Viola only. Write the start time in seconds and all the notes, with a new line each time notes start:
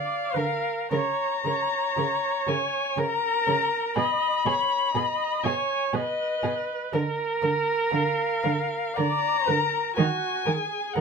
Already playing: D5
0.36 A#4
0.93 C#5
1.46 C#5
2.99 A#4
3.97 D#5
4.46 C#5
4.95 D#5
5.45 C#5
5.94 B4
6.93 A#4
8.98 D5
9.49 A#4
9.97 F#4
10.47 G#4
10.96 A#4